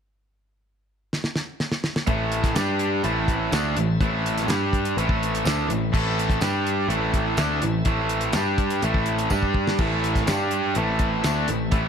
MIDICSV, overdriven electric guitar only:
0, 0, Header, 1, 2, 480
1, 0, Start_track
1, 0, Key_signature, 0, "minor"
1, 0, Tempo, 481541
1, 164, Time_signature, 4, 2, 24, 8
1, 11846, End_track
2, 0, Start_track
2, 0, Title_t, "Overdriven electric guitar"
2, 0, Program_c, 0, 29
2, 2063, Note_on_c, 0, 45, 91
2, 2067, Note_on_c, 0, 52, 99
2, 2072, Note_on_c, 0, 57, 95
2, 2535, Note_off_c, 0, 52, 0
2, 2539, Note_on_c, 0, 55, 81
2, 2543, Note_off_c, 0, 45, 0
2, 2545, Note_off_c, 0, 57, 0
2, 2549, Note_on_c, 0, 62, 91
2, 2549, Note_on_c, 0, 67, 91
2, 3021, Note_off_c, 0, 55, 0
2, 3024, Note_on_c, 0, 45, 84
2, 3026, Note_off_c, 0, 62, 0
2, 3026, Note_off_c, 0, 67, 0
2, 3033, Note_on_c, 0, 57, 92
2, 3035, Note_on_c, 0, 52, 91
2, 3503, Note_off_c, 0, 45, 0
2, 3508, Note_off_c, 0, 57, 0
2, 3509, Note_off_c, 0, 52, 0
2, 3510, Note_on_c, 0, 50, 88
2, 3520, Note_on_c, 0, 57, 98
2, 3526, Note_on_c, 0, 62, 105
2, 3746, Note_off_c, 0, 50, 0
2, 3751, Note_off_c, 0, 57, 0
2, 3754, Note_off_c, 0, 62, 0
2, 3756, Note_on_c, 0, 52, 69
2, 3758, Note_on_c, 0, 45, 60
2, 3948, Note_off_c, 0, 52, 0
2, 3949, Note_off_c, 0, 45, 0
2, 3995, Note_on_c, 0, 45, 91
2, 4000, Note_on_c, 0, 52, 103
2, 4011, Note_on_c, 0, 57, 112
2, 4460, Note_off_c, 0, 52, 0
2, 4460, Note_on_c, 0, 55, 82
2, 4468, Note_off_c, 0, 45, 0
2, 4468, Note_off_c, 0, 57, 0
2, 4468, Note_on_c, 0, 62, 95
2, 4478, Note_on_c, 0, 67, 101
2, 4941, Note_off_c, 0, 55, 0
2, 4945, Note_off_c, 0, 62, 0
2, 4950, Note_off_c, 0, 67, 0
2, 4959, Note_on_c, 0, 45, 84
2, 4966, Note_on_c, 0, 52, 88
2, 4969, Note_on_c, 0, 57, 106
2, 5426, Note_off_c, 0, 57, 0
2, 5431, Note_off_c, 0, 45, 0
2, 5434, Note_off_c, 0, 52, 0
2, 5436, Note_on_c, 0, 50, 90
2, 5438, Note_on_c, 0, 57, 108
2, 5447, Note_on_c, 0, 62, 114
2, 5658, Note_off_c, 0, 50, 0
2, 5662, Note_on_c, 0, 45, 58
2, 5663, Note_off_c, 0, 57, 0
2, 5667, Note_on_c, 0, 52, 61
2, 5675, Note_off_c, 0, 62, 0
2, 5861, Note_off_c, 0, 45, 0
2, 5864, Note_off_c, 0, 52, 0
2, 5911, Note_on_c, 0, 45, 94
2, 5916, Note_on_c, 0, 52, 91
2, 5924, Note_on_c, 0, 57, 102
2, 6387, Note_off_c, 0, 45, 0
2, 6389, Note_off_c, 0, 52, 0
2, 6393, Note_off_c, 0, 57, 0
2, 6394, Note_on_c, 0, 55, 92
2, 6399, Note_on_c, 0, 62, 91
2, 6402, Note_on_c, 0, 67, 104
2, 6863, Note_on_c, 0, 45, 93
2, 6868, Note_off_c, 0, 55, 0
2, 6871, Note_off_c, 0, 62, 0
2, 6873, Note_off_c, 0, 67, 0
2, 6875, Note_on_c, 0, 52, 97
2, 6877, Note_on_c, 0, 57, 101
2, 7341, Note_off_c, 0, 57, 0
2, 7343, Note_off_c, 0, 45, 0
2, 7347, Note_on_c, 0, 50, 92
2, 7349, Note_off_c, 0, 52, 0
2, 7353, Note_on_c, 0, 57, 98
2, 7360, Note_on_c, 0, 62, 107
2, 7585, Note_off_c, 0, 50, 0
2, 7588, Note_off_c, 0, 57, 0
2, 7592, Note_off_c, 0, 62, 0
2, 7592, Note_on_c, 0, 45, 61
2, 7601, Note_on_c, 0, 52, 67
2, 7787, Note_off_c, 0, 45, 0
2, 7791, Note_off_c, 0, 52, 0
2, 7832, Note_on_c, 0, 52, 98
2, 7833, Note_on_c, 0, 45, 93
2, 7840, Note_on_c, 0, 57, 109
2, 8308, Note_off_c, 0, 45, 0
2, 8308, Note_off_c, 0, 52, 0
2, 8312, Note_off_c, 0, 57, 0
2, 8319, Note_on_c, 0, 55, 85
2, 8323, Note_on_c, 0, 62, 81
2, 8326, Note_on_c, 0, 67, 108
2, 8792, Note_off_c, 0, 55, 0
2, 8794, Note_off_c, 0, 62, 0
2, 8795, Note_off_c, 0, 67, 0
2, 8796, Note_on_c, 0, 45, 87
2, 8800, Note_on_c, 0, 52, 92
2, 8808, Note_on_c, 0, 57, 100
2, 9270, Note_off_c, 0, 45, 0
2, 9273, Note_off_c, 0, 52, 0
2, 9277, Note_off_c, 0, 57, 0
2, 9285, Note_on_c, 0, 55, 97
2, 9286, Note_on_c, 0, 62, 96
2, 9298, Note_on_c, 0, 67, 101
2, 9755, Note_off_c, 0, 55, 0
2, 9756, Note_off_c, 0, 62, 0
2, 9759, Note_on_c, 0, 45, 81
2, 9762, Note_off_c, 0, 67, 0
2, 9765, Note_on_c, 0, 52, 94
2, 9772, Note_on_c, 0, 57, 101
2, 10232, Note_off_c, 0, 45, 0
2, 10235, Note_off_c, 0, 52, 0
2, 10239, Note_off_c, 0, 57, 0
2, 10244, Note_on_c, 0, 55, 81
2, 10251, Note_on_c, 0, 62, 90
2, 10252, Note_on_c, 0, 67, 94
2, 10715, Note_off_c, 0, 55, 0
2, 10719, Note_off_c, 0, 62, 0
2, 10719, Note_off_c, 0, 67, 0
2, 10732, Note_on_c, 0, 45, 85
2, 10735, Note_on_c, 0, 52, 85
2, 10736, Note_on_c, 0, 57, 102
2, 11198, Note_off_c, 0, 57, 0
2, 11199, Note_off_c, 0, 45, 0
2, 11201, Note_off_c, 0, 52, 0
2, 11204, Note_on_c, 0, 50, 87
2, 11210, Note_on_c, 0, 57, 99
2, 11216, Note_on_c, 0, 62, 98
2, 11435, Note_off_c, 0, 50, 0
2, 11438, Note_off_c, 0, 57, 0
2, 11441, Note_off_c, 0, 62, 0
2, 11447, Note_on_c, 0, 45, 60
2, 11452, Note_on_c, 0, 52, 61
2, 11636, Note_off_c, 0, 45, 0
2, 11639, Note_off_c, 0, 52, 0
2, 11674, Note_on_c, 0, 45, 89
2, 11682, Note_on_c, 0, 52, 97
2, 11685, Note_on_c, 0, 57, 101
2, 11846, Note_off_c, 0, 45, 0
2, 11846, Note_off_c, 0, 52, 0
2, 11846, Note_off_c, 0, 57, 0
2, 11846, End_track
0, 0, End_of_file